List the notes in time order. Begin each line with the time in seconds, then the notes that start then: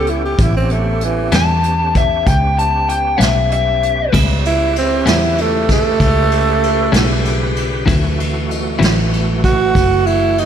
Already playing: C#2 B3 C#4 G4
0.07 E4, closed hi-hat
0.25 G4
0.37 A1 B3 C#4 G4, kick, closed hi-hat
0.42 E4
0.56 C4
0.70 A3, closed hi-hat
1.01 E3, closed hi-hat
1.32 E2 A2 G3 B3 C#4 A5, snare, closed hi-hat
1.63 closed hi-hat
1.95 E5, kick, closed hi-hat
2.26 C#2 G5, kick, closed hi-hat
2.59 A5, closed hi-hat
2.89 G5, closed hi-hat
3.18 B1 A2 G3 B3 C#4 E5, closed hi-hat
3.22 snare
3.51 E5, closed hi-hat
3.83 closed hi-hat
4.13 C#2 A2 C#3 G3 B3 C#4 G4 B4, kick, crash
4.45 E4, ride
4.76 C4, ride
5.06 E2 A2 G3 B3 C#4 E4, snare, ride
5.38 A3, ride
5.69 A3, kick, snare, ride
6.00 C#2, kick, ride
6.31 ride
6.63 ride
6.92 B1 A2 G3 B3 C#4, snare, ride
7.25 ride
7.56 ride
7.86 D2 D3 E3 F#3 A3 C4 E4 F#4, kick, ride
8.20 ride
8.51 ride
8.79 A1 D3 F#3 C4 E4, ride
8.84 snare
9.13 ride
9.44 F#4, kick, ride
9.75 F#1, kick, ride
10.06 E4, ride
10.38 D#4, ride